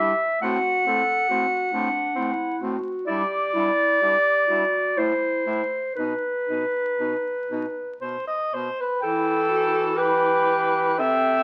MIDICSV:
0, 0, Header, 1, 5, 480
1, 0, Start_track
1, 0, Key_signature, 1, "minor"
1, 0, Tempo, 870827
1, 238, Time_signature, 3, 2, 24, 8
1, 1192, Tempo, 924499
1, 2152, Tempo, 978793
1, 3112, Tempo, 1020408
1, 4552, Tempo, 940439
1, 5032, Tempo, 1020408
1, 5512, Tempo, 928793
1, 5739, End_track
2, 0, Start_track
2, 0, Title_t, "Clarinet"
2, 0, Program_c, 0, 71
2, 0, Note_on_c, 0, 76, 76
2, 227, Note_off_c, 0, 76, 0
2, 231, Note_on_c, 0, 78, 89
2, 1403, Note_off_c, 0, 78, 0
2, 1665, Note_on_c, 0, 74, 111
2, 2625, Note_on_c, 0, 72, 76
2, 2632, Note_off_c, 0, 74, 0
2, 3102, Note_off_c, 0, 72, 0
2, 3105, Note_on_c, 0, 71, 70
2, 4046, Note_off_c, 0, 71, 0
2, 4546, Note_on_c, 0, 79, 79
2, 5008, Note_off_c, 0, 79, 0
2, 5034, Note_on_c, 0, 79, 73
2, 5502, Note_off_c, 0, 79, 0
2, 5513, Note_on_c, 0, 79, 70
2, 5739, Note_off_c, 0, 79, 0
2, 5739, End_track
3, 0, Start_track
3, 0, Title_t, "Clarinet"
3, 0, Program_c, 1, 71
3, 0, Note_on_c, 1, 67, 72
3, 139, Note_off_c, 1, 67, 0
3, 233, Note_on_c, 1, 66, 70
3, 473, Note_off_c, 1, 66, 0
3, 480, Note_on_c, 1, 69, 74
3, 712, Note_on_c, 1, 66, 70
3, 720, Note_off_c, 1, 69, 0
3, 950, Note_on_c, 1, 62, 61
3, 958, Note_off_c, 1, 66, 0
3, 1191, Note_on_c, 1, 64, 57
3, 1199, Note_off_c, 1, 62, 0
3, 1425, Note_on_c, 1, 66, 65
3, 1433, Note_off_c, 1, 64, 0
3, 1663, Note_off_c, 1, 66, 0
3, 1666, Note_on_c, 1, 67, 73
3, 1904, Note_on_c, 1, 64, 65
3, 1912, Note_off_c, 1, 67, 0
3, 2153, Note_on_c, 1, 67, 69
3, 2161, Note_off_c, 1, 64, 0
3, 2378, Note_off_c, 1, 67, 0
3, 2381, Note_on_c, 1, 66, 61
3, 2618, Note_on_c, 1, 64, 58
3, 2625, Note_off_c, 1, 66, 0
3, 2956, Note_off_c, 1, 64, 0
3, 3107, Note_on_c, 1, 63, 56
3, 4294, Note_off_c, 1, 63, 0
3, 4551, Note_on_c, 1, 64, 77
3, 4788, Note_on_c, 1, 66, 74
3, 4796, Note_off_c, 1, 64, 0
3, 5029, Note_on_c, 1, 67, 86
3, 5037, Note_off_c, 1, 66, 0
3, 5504, Note_off_c, 1, 67, 0
3, 5507, Note_on_c, 1, 69, 76
3, 5739, Note_off_c, 1, 69, 0
3, 5739, End_track
4, 0, Start_track
4, 0, Title_t, "Alto saxophone"
4, 0, Program_c, 2, 65
4, 0, Note_on_c, 2, 64, 52
4, 72, Note_off_c, 2, 64, 0
4, 241, Note_on_c, 2, 60, 63
4, 329, Note_off_c, 2, 60, 0
4, 475, Note_on_c, 2, 60, 60
4, 563, Note_off_c, 2, 60, 0
4, 717, Note_on_c, 2, 60, 59
4, 805, Note_off_c, 2, 60, 0
4, 952, Note_on_c, 2, 60, 52
4, 1041, Note_off_c, 2, 60, 0
4, 1185, Note_on_c, 2, 60, 61
4, 1269, Note_off_c, 2, 60, 0
4, 1420, Note_on_c, 2, 60, 54
4, 1503, Note_off_c, 2, 60, 0
4, 1658, Note_on_c, 2, 64, 58
4, 1741, Note_off_c, 2, 64, 0
4, 1906, Note_on_c, 2, 64, 57
4, 1990, Note_off_c, 2, 64, 0
4, 2152, Note_on_c, 2, 64, 54
4, 2230, Note_off_c, 2, 64, 0
4, 2384, Note_on_c, 2, 64, 51
4, 2462, Note_off_c, 2, 64, 0
4, 2624, Note_on_c, 2, 64, 52
4, 2702, Note_off_c, 2, 64, 0
4, 2863, Note_on_c, 2, 64, 50
4, 2942, Note_off_c, 2, 64, 0
4, 3116, Note_on_c, 2, 63, 52
4, 3191, Note_off_c, 2, 63, 0
4, 3356, Note_on_c, 2, 63, 47
4, 3431, Note_off_c, 2, 63, 0
4, 3593, Note_on_c, 2, 63, 43
4, 3669, Note_off_c, 2, 63, 0
4, 3831, Note_on_c, 2, 63, 47
4, 3906, Note_off_c, 2, 63, 0
4, 4072, Note_on_c, 2, 72, 71
4, 4184, Note_off_c, 2, 72, 0
4, 4196, Note_on_c, 2, 75, 71
4, 4320, Note_on_c, 2, 72, 73
4, 4327, Note_off_c, 2, 75, 0
4, 4444, Note_on_c, 2, 71, 67
4, 4451, Note_off_c, 2, 72, 0
4, 4548, Note_off_c, 2, 71, 0
4, 4551, Note_on_c, 2, 69, 99
4, 5031, Note_on_c, 2, 71, 86
4, 5038, Note_off_c, 2, 69, 0
4, 5513, Note_on_c, 2, 76, 92
4, 5521, Note_off_c, 2, 71, 0
4, 5739, Note_off_c, 2, 76, 0
4, 5739, End_track
5, 0, Start_track
5, 0, Title_t, "Baritone saxophone"
5, 0, Program_c, 3, 67
5, 0, Note_on_c, 3, 43, 65
5, 71, Note_off_c, 3, 43, 0
5, 229, Note_on_c, 3, 45, 70
5, 317, Note_off_c, 3, 45, 0
5, 473, Note_on_c, 3, 45, 57
5, 561, Note_off_c, 3, 45, 0
5, 712, Note_on_c, 3, 45, 61
5, 800, Note_off_c, 3, 45, 0
5, 951, Note_on_c, 3, 45, 67
5, 1039, Note_off_c, 3, 45, 0
5, 1194, Note_on_c, 3, 45, 58
5, 1277, Note_off_c, 3, 45, 0
5, 1424, Note_on_c, 3, 45, 64
5, 1507, Note_off_c, 3, 45, 0
5, 1668, Note_on_c, 3, 43, 62
5, 1751, Note_off_c, 3, 43, 0
5, 1907, Note_on_c, 3, 43, 58
5, 1990, Note_off_c, 3, 43, 0
5, 2149, Note_on_c, 3, 43, 55
5, 2228, Note_off_c, 3, 43, 0
5, 2384, Note_on_c, 3, 43, 53
5, 2462, Note_off_c, 3, 43, 0
5, 2617, Note_on_c, 3, 45, 55
5, 2696, Note_off_c, 3, 45, 0
5, 2859, Note_on_c, 3, 45, 55
5, 2937, Note_off_c, 3, 45, 0
5, 3112, Note_on_c, 3, 47, 53
5, 3187, Note_off_c, 3, 47, 0
5, 3354, Note_on_c, 3, 47, 45
5, 3429, Note_off_c, 3, 47, 0
5, 3587, Note_on_c, 3, 47, 51
5, 3662, Note_off_c, 3, 47, 0
5, 3828, Note_on_c, 3, 47, 52
5, 3904, Note_off_c, 3, 47, 0
5, 4069, Note_on_c, 3, 47, 44
5, 4144, Note_off_c, 3, 47, 0
5, 4316, Note_on_c, 3, 47, 50
5, 4391, Note_off_c, 3, 47, 0
5, 4551, Note_on_c, 3, 52, 74
5, 5512, Note_on_c, 3, 48, 60
5, 5520, Note_off_c, 3, 52, 0
5, 5739, Note_off_c, 3, 48, 0
5, 5739, End_track
0, 0, End_of_file